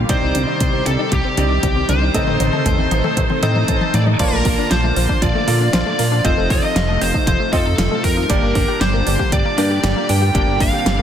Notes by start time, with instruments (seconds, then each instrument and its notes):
Already playing: supersaw synth G3
0.09 analog synth bass C2, supersaw synth C3 D#3 G4 D5, synth arpeggio sound G3, electric grand piano C4 D#4 G4 D5, lead electric guitar C5, kick, closed hi-hat, mid tom
0.22 analog synth bass C2, synth arpeggio sound C4
0.35 analog synth bass C2, synth arpeggio sound D4, closed hi-hat, mid tom
0.47 synth arpeggio sound D#4
0.60 analog synth bass C2, synth arpeggio sound G3, kick, closed hi-hat, mid tom
0.73 synth arpeggio sound C4
0.86 analog synth bass C2, synth arpeggio sound D4, lead electric guitar A4, closed hi-hat, mid tom
0.99 synth arpeggio sound D#4
1.12 analog synth bass C2, synth arpeggio sound G3, lead electric guitar G4, kick, closed hi-hat, mid tom
1.25 synth arpeggio sound C4
1.37 analog synth bass C2, electric grand piano C4 D#4 G4 D5, synth arpeggio sound D4, closed hi-hat, mid tom
1.50 synth arpeggio sound D#4
1.63 analog synth bass C2, synth arpeggio sound G3, kick, closed hi-hat, mid tom
1.76 synth arpeggio sound C4
1.89 analog synth bass C2, synth arpeggio sound D4, lead electric guitar C5, closed hi-hat, mid tom
2.02 synth arpeggio sound D#4
2.14 analog synth bass A1, synth arpeggio sound A3, supersaw synth A3 D#4 A4, electric grand piano C4 D#4 A4 D#5, kick, closed hi-hat, mid tom
2.27 analog synth bass A1, synth arpeggio sound C4, mid tom
2.40 analog synth bass A1, synth arpeggio sound D#4, closed hi-hat, mid tom
2.53 synth arpeggio sound A4, mid tom
2.66 analog synth bass A1, synth arpeggio sound A3, kick, closed hi-hat, mid tom
2.79 synth arpeggio sound C4, mid tom
2.91 analog synth bass A1, synth arpeggio sound D#4, closed hi-hat, mid tom
3.04 synth arpeggio sound A4, mid tom
3.17 analog synth bass A1, synth arpeggio sound A3, kick, closed hi-hat, mid tom
3.30 synth arpeggio sound C4, mid tom
3.43 analog synth bass A2, synth arpeggio sound C4, electric grand piano C4 D#4 A4 D#5, lead electric guitar C5, closed hi-hat, mid tom
3.55 synth arpeggio sound D#4, mid tom
3.68 analog synth bass A1, synth arpeggio sound A5, kick, closed hi-hat, mid tom
3.81 synth arpeggio sound A5, mid tom
3.94 analog synth bass A2, synth arpeggio sound D#4, lead electric guitar D5, closed hi-hat, mid tom
4.07 synth arpeggio sound D#4, mid tom
4.19 analog synth bass A#1, supersaw synth D3 F3 A#3 F4 A5, synth arpeggio sound F3, electric grand piano A#3 F4 D5 A5, lead electric guitar A#4, kick, closed hi-hat, crash
4.32 analog synth bass A#1, synth arpeggio sound A3
4.45 analog synth bass A#1, synth arpeggio sound A#3, kick, open hi-hat
4.58 synth arpeggio sound D4
4.71 analog synth bass A#1, synth arpeggio sound F3, lead electric guitar C5, snare, closed hi-hat
4.84 synth arpeggio sound A3
4.96 analog synth bass A#1, synth arpeggio sound A#3, open hi-hat
5.09 synth arpeggio sound D4, kick
5.22 analog synth bass A#1, synth arpeggio sound F3, lead electric guitar D5, kick, closed hi-hat
5.35 synth arpeggio sound A3
5.48 analog synth bass A#2, synth arpeggio sound A#3, electric grand piano A#3 F4 A4 D5, open hi-hat
5.61 synth arpeggio sound D4
5.73 analog synth bass A#1, synth arpeggio sound F3, lead electric guitar D5, snare, closed hi-hat
5.86 synth arpeggio sound A3
5.99 analog synth bass A#2, synth arpeggio sound A#3, open hi-hat
6.12 synth arpeggio sound D4
6.25 analog synth bass F1, supersaw synth C3 A3 D#4, synth arpeggio sound F3, electric grand piano C4 F4 A4 D#5, lead electric guitar C5, kick, closed hi-hat
6.37 analog synth bass F1, synth arpeggio sound A3
6.50 analog synth bass F1, synth arpeggio sound C4, lead electric guitar D#5, kick, open hi-hat
6.63 synth arpeggio sound D#4
6.76 analog synth bass F1, synth arpeggio sound F3, snare, closed hi-hat
6.89 synth arpeggio sound A3
7.01 analog synth bass F1, synth arpeggio sound C4, lead electric guitar C5, open hi-hat
7.14 synth arpeggio sound D#4, kick
7.27 analog synth bass F1, synth arpeggio sound F3, lead electric guitar C5, kick, closed hi-hat
7.40 synth arpeggio sound A3
7.53 analog synth bass F2, electric grand piano C4 F4 A4 D#5, synth arpeggio sound C4, lead electric guitar A4, kick, mid tom, open hi-hat
7.66 synth arpeggio sound D#4
7.78 analog synth bass F1, synth arpeggio sound F3, snare, closed hi-hat
7.91 synth arpeggio sound A3
8.04 analog synth bass F2, synth arpeggio sound C4, lead electric guitar A#4, kick, open hi-hat
8.17 synth arpeggio sound D#4
8.30 analog synth bass G1, supersaw synth A#2 D3 G3 D4 G4, synth arpeggio sound G3, electric grand piano A#3 D4 G4 D5, kick, closed hi-hat
8.43 analog synth bass G1, synth arpeggio sound A#3
8.55 analog synth bass G1, synth arpeggio sound D4, kick, open hi-hat
8.68 synth arpeggio sound G4
8.81 analog synth bass G1, synth arpeggio sound G3, lead electric guitar C5, snare, closed hi-hat
8.94 synth arpeggio sound A#3
9.07 analog synth bass G1, synth arpeggio sound D4, open hi-hat
9.19 synth arpeggio sound G4, kick
9.32 analog synth bass G1, synth arpeggio sound G3, lead electric guitar D5, kick, closed hi-hat
9.45 synth arpeggio sound A#3
9.58 analog synth bass G2, electric grand piano A#3 D4 G4 D5, synth arpeggio sound D4, lead electric guitar D5, open hi-hat
9.71 synth arpeggio sound G4
9.83 analog synth bass G1, synth arpeggio sound G3, snare, closed hi-hat
9.96 synth arpeggio sound A#3
10.09 analog synth bass G2, synth arpeggio sound D4, lead electric guitar G5, open hi-hat
10.22 synth arpeggio sound G4
10.35 analog synth bass G1, synth arpeggio sound G3, electric grand piano A#3 D4 G4 D5, supersaw synth C4, lead electric guitar G5, kick, closed hi-hat
10.48 analog synth bass G1, synth arpeggio sound A#3
10.60 analog synth bass G1, synth arpeggio sound D4, lead electric guitar F5, kick, open hi-hat
10.73 synth arpeggio sound G4
10.86 analog synth bass G1, synth arpeggio sound G3, snare, closed hi-hat
10.99 synth arpeggio sound A#3